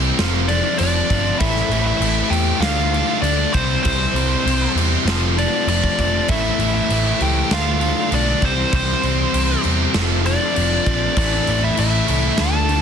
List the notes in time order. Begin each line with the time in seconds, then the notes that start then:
Already playing: C3 E3 G3 C4 E4 C5 G5
0.17 F1 F2 C3 F3 A3 C4 F4 A5, snare, crash
0.48 F2 C3 F3 D4 D5, crash
0.78 F1 F2 C3 F3 D4 D5, crash
1.09 G1 F2 C3 F3, kick, crash
1.38 A1 A2 E3 E4 E5, kick, crash
1.42 A3 C4 E4
1.56 snare
1.69 A1 A2 E3 A3, crash
1.82 E4
1.86 E5
2.00 A1 A2 E3 A3, crash
2.29 E2 A2 E3 A3 G4 G5, crash
2.58 D2 D3 F4 F5
2.62 A3 D4 F4 D5, snare, crash
2.94 D3 A3 D4, crash
3.22 D2 D3 A3 D4 D5, crash
3.52 C2 C3 E3 G3 C4 C5, kick, crash
3.57 E4 C5 G5
3.83 C2 C3 G3 C4 C5, kick, crash
4.13 C2 C3 G3 C4, crash
4.45 C2 C3 G3 C4, crash
4.75 E2 C3 G3 C4, crash
5.05 F1 F2 C3 F3 A3 C4 F4 A5, snare, crash
5.10 F4
5.37 F2 C3 F3 D4 D5, crash
5.67 F1 F2 C3 F3 D4 D5, crash
5.84 kick
5.98 F1 F2 C3 F3, kick, crash
6.28 A1 A2 E3 A3 C4 E4 E5, kick, crash
6.59 A1 A2 E3 A3, crash
6.74 E4 E5
6.90 A1 A2 E3 A3, crash
7.21 C#2 A2 E3 A3 G4 G5, crash
7.51 D2 D3 A3 D4 F4 D5 F5, snare, crash
7.81 D3 A3 D4, crash
8.11 B1 D3 A3 D4 D5, crash
8.40 C2 C3 E3 G3 C4 E4 C5 G5, kick, crash
8.45 C4 C5
8.73 C2 C3 G3 C4 C5, kick, crash
9.03 C2 C3 G3 C4, crash
9.34 C2 C3 G3 C4, crash
9.64 E2 C3 G3 C4, crash
9.94 F1 F2 C3 F3 A3 C4 F4 C5 A5, snare, crash
10.25 F2 C3 F3 D4 D5, crash
10.55 F1 F2 C3 F3, crash
10.85 A#1 F2 C3 F3, kick, crash
11.16 A1 A2 E3 A3 C4 D4 E4 C5 D5, kick, crash
11.46 A1 A2 E3 A3, crash
11.63 E4 E5
11.77 A1 A2 E3 A3 E4 E5, crash
12.07 C2 A2 E3 A3, crash
12.38 D2 D3 A3 D4 F4 A4 D5 A5, snare, crash
12.68 D3 A3 D4, crash